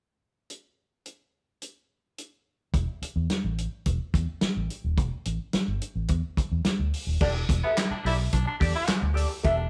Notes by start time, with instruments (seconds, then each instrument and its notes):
0.50 closed hi-hat
1.06 closed hi-hat
1.62 closed hi-hat
2.18 closed hi-hat
2.74 fingered electric bass E1, kick, closed hi-hat
3.02 muted fingered electric bass stroke, closed hi-hat
3.16 fingered electric bass E2
3.30 muted fingered electric bass stroke, snare, closed hi-hat
3.44 fingered electric bass A1
3.58 closed hi-hat
3.86 fingered electric bass E1, kick, closed hi-hat
4.14 fingered electric bass E2, kick, closed hi-hat
4.41 muted fingered electric bass stroke, snare, closed hi-hat
4.57 fingered electric bass A1
4.70 closed hi-hat
4.84 fingered electric bass D#1
4.97 fingered electric bass E1, kick, closed hi-hat
5.25 fingered electric bass A1, closed hi-hat
5.53 muted fingered electric bass stroke, snare, closed hi-hat
5.68 fingered electric bass G1
5.81 closed hi-hat
5.96 fingered electric bass A1
6.08 fingered electric bass E2, kick, closed hi-hat
6.37 muted fingered electric bass stroke, kick, closed hi-hat
6.51 fingered electric bass E2
6.65 muted fingered electric bass stroke, snare, closed hi-hat
6.79 fingered electric bass D2
6.94 open hi-hat
7.07 fingered electric bass D#1
7.21 fingered electric bass E1, baritone saxophone D4, hollow-body jazz guitar G4 A4 D5, kick, crash
7.35 muted hollow-body jazz guitar stroke
7.49 fingered electric bass E1, muted hollow-body jazz guitar stroke, kick, closed hi-hat
7.63 baritone saxophone B3, hollow-body jazz guitar G4 A4 E5
7.77 muted hollow-body jazz guitar stroke, snare, clap, closed hi-hat
7.91 baritone saxophone D4, muted fingered electric bass stroke
8.05 fingered electric bass B1, baritone saxophone E4, hollow-body jazz guitar G4 A4 D5, open hi-hat
8.18 muted hollow-body jazz guitar stroke
8.33 fingered electric bass B1, baritone saxophone D4, kick, closed hi-hat
8.46 baritone saxophone D4, muted hollow-body jazz guitar stroke
8.60 fingered electric bass E2, hollow-body jazz guitar G4 A4 D5, kick, open hi-hat
8.74 baritone saxophone E4, muted hollow-body jazz guitar stroke
8.87 muted hollow-body jazz guitar stroke, muted fingered electric bass stroke, snare, clap, closed hi-hat
9.01 fingered electric bass D2, muted hollow-body jazz guitar stroke
9.14 hollow-body jazz guitar G4 A4 D5, open hi-hat
9.29 muted hollow-body jazz guitar stroke
9.44 fingered electric bass E1, baritone saxophone D4, hollow-body jazz guitar G4 A4 E5, kick, closed hi-hat
9.57 muted hollow-body jazz guitar stroke